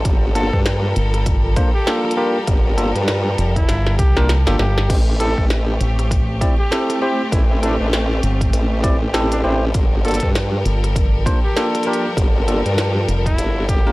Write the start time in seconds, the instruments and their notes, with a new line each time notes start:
Already playing: string section A4
0.05 wobble bass G1, string section F3 G3 A#4, kick, closed hi-hat
0.35 tine electric piano A#3 D4 F4 A4, trumpet A4, closed hi-hat
0.53 wobble bass G2, kick
0.66 snare, closed hi-hat
0.96 fingered electric bass G1, closed hi-hat
1.14 cross-stick, closed hi-hat
1.26 kick, closed hi-hat
1.56 tine electric piano A#3 D4 F4 C5, kick, closed hi-hat
1.75 trumpet G4
1.87 tine electric piano A#3 D4 F4 A4, snare, closed hi-hat
2.05 cross-stick
2.11 closed hi-hat
2.17 tine electric piano A#3 D4 F4 A#4, trumpet G4
2.47 wobble bass G1, kick, closed hi-hat
2.78 tine electric piano A#3 D4 F4 A4, closed hi-hat
2.95 wobble bass G2, closed hi-hat
3.08 snare, closed hi-hat
3.38 fingered electric bass F1, closed hi-hat
3.56 trumpet E4, kick, closed hi-hat
3.69 fingered electric bass G1, snare, closed hi-hat
3.87 snare
3.98 fingered electric bass C2, trumpet G4, kick, closed hi-hat
4.17 tine electric piano A#3 D4 F4 A#4, snare
4.29 snare, closed hi-hat
4.46 fingered electric bass G1, tine electric piano A#3 D4 F4 A4, trumpet G4, snare, closed hi-hat
4.59 fingered electric bass G1, trumpet G4, snare
4.78 snare
4.90 wobble bass A1, string section A3 C4 G4, kick, closed hi-hat, crash
5.20 tine electric piano C4 E4 G4 A4, trumpet A4, closed hi-hat
5.38 wobble bass A1, kick
5.50 snare, closed hi-hat
5.81 fingered electric bass A1, closed hi-hat
5.99 cross-stick, closed hi-hat
6.11 kick, closed hi-hat
6.41 tine electric piano C4 E4 G4 D5, kick, closed hi-hat
6.59 trumpet G4
6.71 tine electric piano C4 E4 G4 A4, snare, closed hi-hat
6.90 cross-stick, closed hi-hat
7.02 tine electric piano C4 E4 G4 C5, trumpet G4
7.32 wobble bass A1, trumpet E4, kick, closed hi-hat
7.50 trumpet E4
7.63 tine electric piano C4 E4 G4 A4, trumpet D4, closed hi-hat
7.80 wobble bass A1, trumpet D4
7.93 snare, closed hi-hat
8.23 fingered electric bass G1, closed hi-hat
8.41 kick, closed hi-hat
8.53 wobble bass A1, closed hi-hat
8.84 tine electric piano C4 E4 G4 D5, kick, closed hi-hat
9.14 tine electric piano C4 E4 G4 A4, snare, closed hi-hat
9.32 trumpet D4, closed hi-hat
9.44 wobble bass A1, tine electric piano C4 E4 G4 C5, trumpet D4
9.74 wobble bass G1, string section F3 G3 A4 A#4, kick, closed hi-hat
10.05 tine electric piano A#3 D4 F4 A4, trumpet A4, closed hi-hat
10.08 closed hi-hat
10.11 closed hi-hat
10.14 closed hi-hat
10.20 wobble bass G2, kick, closed hi-hat
10.35 snare, closed hi-hat
10.65 fingered electric bass G1, closed hi-hat
10.84 cross-stick, closed hi-hat
10.96 kick, closed hi-hat
11.26 tine electric piano A#3 D4 F4 C5, kick, closed hi-hat
11.44 trumpet G4
11.56 tine electric piano A#3 D4 F4 A4, snare, closed hi-hat
11.75 cross-stick, closed hi-hat
11.83 tine electric piano A#3 D4 F4 A#4, trumpet G4, closed hi-hat
11.93 closed hi-hat
12.17 wobble bass G1, kick, closed hi-hat
12.48 tine electric piano A#3 D4 F4 A4, closed hi-hat
12.66 wobble bass G2, closed hi-hat
12.78 snare, closed hi-hat
13.08 fingered electric bass F1, closed hi-hat
13.26 trumpet E4, kick, closed hi-hat
13.38 wobble bass G1, closed hi-hat
13.68 trumpet G4, kick, closed hi-hat
13.87 wobble bass G1, tine electric piano A#3 D4 F4 A#4